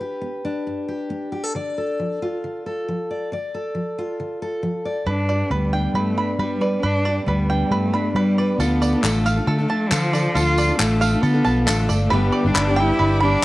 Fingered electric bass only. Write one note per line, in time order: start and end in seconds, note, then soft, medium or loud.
5.06 5.42 G2 medium
5.51 5.86 D2 medium
5.94 6.12 G3 medium
6.39 6.74 G3 medium
6.83 7.19 G2 medium
7.27 7.62 D2 medium
7.71 7.89 G3 medium
8.15 8.50 G3 medium
8.59 8.94 D2 medium
9.03 9.39 A1 medium
9.47 9.65 D3 loud
9.92 10.27 D3 medium
10.35 10.70 D2 medium
10.79 11.14 A1 loud
11.23 11.41 D3 loud
11.45 11.65 B1 medium
11.67 11.87 A1 medium
11.89 12.09 G1 medium
12.11 12.29 G1 loud
12.44 12.53 G1 loud
12.55 12.90 G1 medium
12.99 13.34 G1 loud